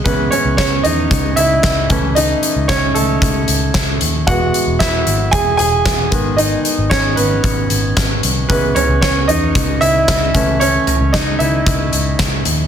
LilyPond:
<<
  \new Staff \with { instrumentName = "Grand piano" } { \time 4/4 \key a \lydian \tempo 4 = 114 <b b'>8 <cis' cis''>8 <cis' cis''>8 <dis' dis''>4 <e' e''>4. | <dis' dis''>4 <cis' cis''>8 <a a'>2 r8 | <fis' fis''>4 <e' e''>4 <gis' gis''>8 <gis' gis''>4. | <dis' dis''>4 <cis' cis''>8 <b b'>2 r8 |
<b b'>8 <cis' cis''>8 <cis' cis''>8 <dis' dis''>4 <e' e''>4. | <cis' cis''>4 <dis' dis''>8 <e' e''>2 r8 | }
  \new Staff \with { instrumentName = "Grand piano" } { \clef bass \time 4/4 \key a \lydian <e gis cis'>2.~ <e gis cis'>8 <e a cis'>8~ | <e a cis'>4 r2. | <e gis b>2.~ <e gis b>8 <dis gis b>8 | r1 |
<e gis cis'>4. r2 <e a cis'>8~ | <e a cis'>2.~ <e a cis'>8 r8 | }
  \new Staff \with { instrumentName = "Picked electric bass" } { \clef bass \time 4/4 \key a \lydian cis,8 r16 cis,16 r8 e,8 cis,8 cis,8 cis,8 cis,8~ | cis,8 r16 cis,16 r8 cis,8 cis,8 cis,8 cis,8 dis,8 | e,,8 r16 e,,16 r8 gis,,8 e,,8 e,,8 e,,8 gis,,8~ | gis,,8 r16 gis,,16 r8 gis,,8 gis,,8 gis,,8 gis,,8 c,8 |
cis,8 r16 cis,16 cis,8 e,8 cis,8 cis,8 cis,8 cis,8~ | cis,8 r16 cis,16 r8 cis,8 cis,8 cis,8 cis,8 dis,8 | }
  \new DrumStaff \with { instrumentName = "Drums" } \drummode { \time 4/4 <hh bd>8 hh8 <hh bd sn>8 hh8 <hh bd>8 hh8 <hh bd sn>8 <hh bd>8 | hh8 hh8 <hh bd sn>8 hh8 <hh bd>8 hh8 <hh bd sn>8 hh8 | <hh bd>8 hh8 <hh bd sn>8 hh8 <hh bd>8 hh8 <hh bd sn>8 <hh bd>8 | hh8 hh8 <hh bd sn>8 hh8 <hh bd>8 hh8 <hh bd sn>8 hh8 |
<hh bd>8 <hh tomfh>8 <hh bd sn>8 hh8 <hh bd>8 hh8 <hh bd sn>8 <hh bd>8 | hh8 <hh tomfh>8 <hh bd sn>8 hh8 <hh bd>8 hh8 <hh bd sn>8 hh8 | }
>>